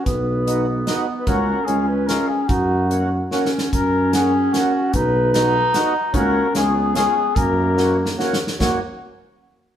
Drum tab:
HH |x--x--x--|x--x--x--|x--x-----|x--x--x--|
SD |------o--|------o--|------ooo|---o--o--|
BD |o--------|o--------|o--------|o--------|

HH |x--x--x--|x--x--x--|x--------|---------|
SD |---o--o--|---o--o--|---o-oooo|o--------|
BD |o--------|o--------|o--------|o--------|